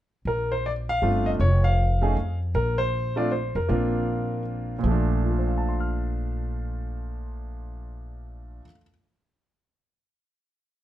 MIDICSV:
0, 0, Header, 1, 3, 480
1, 0, Start_track
1, 0, Key_signature, -2, "major"
1, 0, Tempo, 381437
1, 325, Time_signature, 3, 2, 24, 8
1, 13635, End_track
2, 0, Start_track
2, 0, Title_t, "Grand piano"
2, 0, Program_c, 0, 0
2, 345, Note_on_c, 0, 70, 77
2, 647, Note_off_c, 0, 70, 0
2, 650, Note_on_c, 0, 72, 77
2, 820, Note_off_c, 0, 72, 0
2, 831, Note_on_c, 0, 74, 77
2, 896, Note_off_c, 0, 74, 0
2, 1124, Note_on_c, 0, 77, 97
2, 1282, Note_on_c, 0, 60, 51
2, 1283, Note_on_c, 0, 57, 52
2, 1295, Note_on_c, 0, 62, 48
2, 1299, Note_on_c, 0, 65, 59
2, 1586, Note_on_c, 0, 75, 78
2, 1611, Note_off_c, 0, 77, 0
2, 1649, Note_off_c, 0, 75, 0
2, 1764, Note_off_c, 0, 57, 0
2, 1764, Note_off_c, 0, 60, 0
2, 1769, Note_on_c, 0, 73, 81
2, 1770, Note_off_c, 0, 62, 0
2, 1772, Note_off_c, 0, 65, 0
2, 2050, Note_off_c, 0, 73, 0
2, 2066, Note_on_c, 0, 77, 91
2, 2539, Note_on_c, 0, 57, 57
2, 2545, Note_on_c, 0, 61, 52
2, 2549, Note_on_c, 0, 63, 51
2, 2551, Note_on_c, 0, 68, 67
2, 2703, Note_off_c, 0, 57, 0
2, 2706, Note_off_c, 0, 61, 0
2, 2708, Note_off_c, 0, 63, 0
2, 2709, Note_off_c, 0, 68, 0
2, 2979, Note_off_c, 0, 77, 0
2, 3208, Note_on_c, 0, 70, 78
2, 3491, Note_off_c, 0, 70, 0
2, 3499, Note_on_c, 0, 72, 91
2, 3953, Note_off_c, 0, 72, 0
2, 3976, Note_on_c, 0, 57, 59
2, 3982, Note_on_c, 0, 60, 57
2, 3986, Note_on_c, 0, 62, 58
2, 3993, Note_on_c, 0, 74, 74
2, 3994, Note_on_c, 0, 65, 65
2, 4144, Note_off_c, 0, 57, 0
2, 4146, Note_off_c, 0, 60, 0
2, 4149, Note_off_c, 0, 62, 0
2, 4152, Note_off_c, 0, 65, 0
2, 4157, Note_off_c, 0, 74, 0
2, 4172, Note_on_c, 0, 72, 66
2, 4477, Note_on_c, 0, 70, 66
2, 4484, Note_off_c, 0, 72, 0
2, 4639, Note_on_c, 0, 58, 63
2, 4647, Note_on_c, 0, 60, 55
2, 4649, Note_on_c, 0, 65, 66
2, 4650, Note_on_c, 0, 62, 52
2, 5564, Note_off_c, 0, 70, 0
2, 5982, Note_off_c, 0, 58, 0
2, 5986, Note_off_c, 0, 60, 0
2, 5987, Note_off_c, 0, 62, 0
2, 5987, Note_off_c, 0, 65, 0
2, 6024, Note_on_c, 0, 46, 57
2, 6077, Note_on_c, 0, 53, 54
2, 6128, Note_on_c, 0, 57, 53
2, 6181, Note_on_c, 0, 62, 62
2, 6581, Note_on_c, 0, 65, 40
2, 6676, Note_on_c, 0, 69, 36
2, 6777, Note_on_c, 0, 72, 37
2, 6890, Note_on_c, 0, 77, 35
2, 7017, Note_on_c, 0, 81, 34
2, 7154, Note_on_c, 0, 84, 32
2, 7301, Note_on_c, 0, 89, 33
2, 10813, Note_off_c, 0, 65, 0
2, 10825, Note_off_c, 0, 46, 0
2, 10852, Note_off_c, 0, 53, 0
2, 10861, Note_off_c, 0, 69, 0
2, 10878, Note_off_c, 0, 57, 0
2, 10904, Note_off_c, 0, 62, 0
2, 10912, Note_off_c, 0, 72, 0
2, 10968, Note_off_c, 0, 77, 0
2, 11031, Note_off_c, 0, 81, 0
2, 11100, Note_off_c, 0, 84, 0
2, 11174, Note_off_c, 0, 89, 0
2, 13635, End_track
3, 0, Start_track
3, 0, Title_t, "Upright bass"
3, 0, Program_c, 1, 32
3, 317, Note_on_c, 1, 34, 68
3, 1231, Note_off_c, 1, 34, 0
3, 1282, Note_on_c, 1, 31, 67
3, 1730, Note_off_c, 1, 31, 0
3, 1754, Note_on_c, 1, 29, 76
3, 2671, Note_off_c, 1, 29, 0
3, 2726, Note_on_c, 1, 41, 73
3, 3174, Note_off_c, 1, 41, 0
3, 3201, Note_on_c, 1, 34, 77
3, 4421, Note_off_c, 1, 34, 0
3, 4470, Note_on_c, 1, 41, 69
3, 4636, Note_off_c, 1, 41, 0
3, 4646, Note_on_c, 1, 34, 76
3, 6041, Note_off_c, 1, 34, 0
3, 6086, Note_on_c, 1, 34, 78
3, 10806, Note_off_c, 1, 34, 0
3, 13635, End_track
0, 0, End_of_file